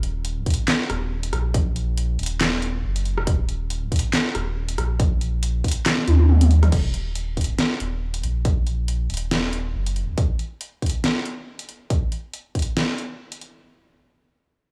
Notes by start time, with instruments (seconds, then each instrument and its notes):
Already playing: sub bass D#1
0.03 closed hi-hat
0.25 closed hi-hat
0.46 kick, closed hi-hat
0.50 closed hi-hat
0.54 closed hi-hat
0.68 snare, clap, closed hi-hat
0.89 sub bass D#1, cross-stick, closed hi-hat
1.23 closed hi-hat
1.33 sub bass A#1, cross-stick, closed hi-hat
1.54 kick, closed hi-hat
1.76 closed hi-hat
1.98 closed hi-hat
2.19 sub bass D#1, closed hi-hat
2.23 closed hi-hat
2.26 closed hi-hat
2.41 snare, clap, closed hi-hat
2.62 closed hi-hat
2.84 sub bass F#1
2.96 closed hi-hat
3.05 closed hi-hat
3.18 cross-stick
3.27 sub bass D#1, kick, closed hi-hat
3.49 closed hi-hat
3.70 closed hi-hat
3.92 kick, closed hi-hat
3.96 closed hi-hat
3.99 closed hi-hat
4.13 snare, clap, closed hi-hat
4.35 sub bass D#1, cross-stick, closed hi-hat
4.69 closed hi-hat
4.78 sub bass A#1, cross-stick, closed hi-hat
5.00 kick, closed hi-hat
5.21 closed hi-hat
5.43 closed hi-hat
5.64 kick, closed hi-hat
5.68 closed hi-hat
5.72 closed hi-hat
5.86 cross-stick, snare, clap, closed hi-hat
5.98 snare
6.07 sub bass D#2, closed hi-hat, high tom
6.20 high tom
6.29 mid tom
6.41 closed hi-hat, mid tom
6.51 closed hi-hat
6.63 cross-stick, closed hi-hat, mid tom
6.72 sub bass D#1, kick, closed hi-hat, crash
6.94 closed hi-hat
7.15 closed hi-hat
7.32 sub bass D1
7.37 kick, closed hi-hat
7.41 closed hi-hat
7.44 closed hi-hat
7.59 snare, closed hi-hat
7.80 sub bass D#1, closed hi-hat
8.14 closed hi-hat
8.23 sub bass A#1, closed hi-hat
8.45 kick, closed hi-hat
8.67 closed hi-hat
8.88 closed hi-hat
9.10 sub bass D#1, closed hi-hat
9.14 closed hi-hat
9.17 closed hi-hat
9.31 snare, closed hi-hat
9.53 closed hi-hat
9.74 sub bass F#1
9.86 closed hi-hat
9.96 closed hi-hat
10.18 kick, closed hi-hat
10.39 closed hi-hat
10.61 closed hi-hat
10.82 kick, closed hi-hat
10.86 closed hi-hat
10.90 closed hi-hat
11.04 snare, closed hi-hat
11.26 closed hi-hat
11.59 closed hi-hat
11.69 closed hi-hat
11.90 kick, closed hi-hat
12.12 closed hi-hat
12.33 closed hi-hat
12.55 kick, closed hi-hat
12.59 closed hi-hat
12.62 closed hi-hat
12.77 snare, closed hi-hat
12.98 closed hi-hat
13.32 closed hi-hat
13.41 closed hi-hat